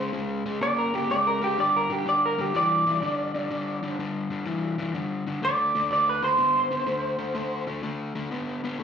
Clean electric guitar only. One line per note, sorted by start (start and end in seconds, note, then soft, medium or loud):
0.63 0.77 D5 medium
0.78 0.95 A#4 medium
0.95 1.10 G4 medium
1.11 1.26 D5 medium
1.27 1.42 A#4 medium
1.44 1.58 G4 medium
1.60 1.74 D5 medium
1.76 1.92 A#4 medium
1.92 2.06 G4 medium
2.09 2.23 D5 medium
2.26 2.41 A#4 medium
2.41 2.55 G4 medium
2.56 3.95 D5 loud
5.45 5.90 D5 loud
5.93 6.07 D5 medium
6.09 6.24 B4 medium
6.24 7.64 C5 medium